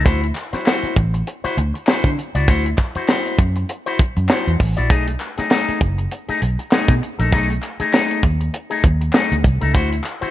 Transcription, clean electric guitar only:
0.05 E4 F#4 C5
0.22 muted clean electric guitar stroke
0.36 muted clean electric guitar stroke
0.53 E4 F#4 C5
0.66 E4 F#4 C5
1.14 muted clean electric guitar stroke
1.27 muted clean electric guitar stroke
1.44 E4 F#4 C5
1.58 muted clean electric guitar stroke
1.74 muted clean electric guitar stroke
1.87 E4 F#4 C5
2.18 muted clean electric guitar stroke
2.35 E4 F#4 D5
2.48 E4 F#4 C5
2.65 muted clean electric guitar stroke
2.78 muted clean electric guitar stroke
2.96 E4 F#4 C5
3.09 E4 F#4 C5
3.39 muted clean electric guitar stroke
3.56 muted clean electric guitar stroke
3.69 muted clean electric guitar stroke
3.86 E4 F#4 C5
3.99 muted clean electric guitar stroke
4.17 muted clean electric guitar stroke
4.29 E4 F#4 C5
4.60 muted clean electric guitar stroke
4.77 E4 F#4 D5
4.90 A3 D#4 G#4
5.07 muted clean electric guitar stroke
5.21 muted clean electric guitar stroke
5.38 A3 D#4 G#4
5.51 A3 D#4 G#4
5.81 muted clean electric guitar stroke
5.98 muted clean electric guitar stroke
6.11 muted clean electric guitar stroke
6.28 A3 D#4 G#4
6.42 muted clean electric guitar stroke
6.59 muted clean electric guitar stroke
6.72 A3 D#4 G#4
7.02 muted clean electric guitar stroke
7.19 A3 D#4 A4
7.32 A3 D#4 G#4
7.49 muted clean electric guitar stroke
7.62 muted clean electric guitar stroke
7.80 A3 D#4 G#4
7.93 A3 D#4 G#4
8.40 muted clean electric guitar stroke
8.53 muted clean electric guitar stroke
8.70 A3 D#4 G#4
8.84 muted clean electric guitar stroke
9.01 muted clean electric guitar stroke
9.14 A3 D#4 G#4
9.44 muted clean electric guitar stroke
9.61 A3 D#4 A4
9.74 E4 F#4 C5
9.91 muted clean electric guitar stroke
10.04 muted clean electric guitar stroke
10.21 E4 F#4 C5

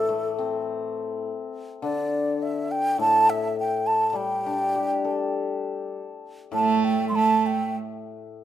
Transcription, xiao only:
Already playing: A4
1.84 D5
2.42 E5
2.71 G5
3.01 A5
3.30 E5
3.60 G5
3.87 A5
4.10 A5
4.16 G5
6.54 A5
6.84 G5
7.09 C6
7.16 A5
7.46 G5

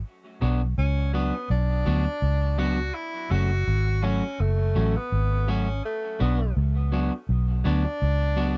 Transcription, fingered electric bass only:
0.42 B1
0.78 C#2
1.50 B1
1.86 D2
2.22 C#2
3.31 F#1
3.67 G#1
4.40 F#1
4.76 A1
5.12 G#1
6.21 B1
6.57 C#2
7.29 B1
7.66 D2
8.02 C#2

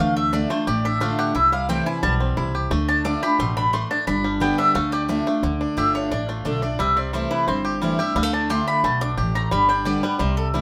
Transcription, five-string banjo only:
0.00 A3
0.33 D4
0.50 A3
0.67 G4
0.85 D4
1.01 A3
1.19 G4
1.35 E4
1.52 G3
1.69 C4
1.86 E4
2.03 G3
2.20 C4
2.37 E4
2.55 G4
2.71 A3
2.89 D4
3.05 D4
3.23 G4
3.40 A3
3.57 D4
3.74 A3
3.91 D4
4.07 D4
4.24 G3
4.41 B3
4.59 D4
4.75 A3
4.93 G4
5.09 D4
5.27 A3
5.43 D3
5.61 D4
5.78 G4
5.95 D4
6.11 D4
6.29 A3
6.45 D4
6.62 D4
6.79 G3
6.97 C4
7.13 G3
7.31 E4
7.48 C4
7.65 G4
7.82 G3
7.99 G4
8.16 G3
8.23 A3
8.33 D4
8.50 G4
8.68 D4
8.84 A3
9.01 D4
9.17 G4
9.35 A3
9.51 G3
9.69 D4
9.85 G4
10.03 G3
10.19 G3
10.54 G3

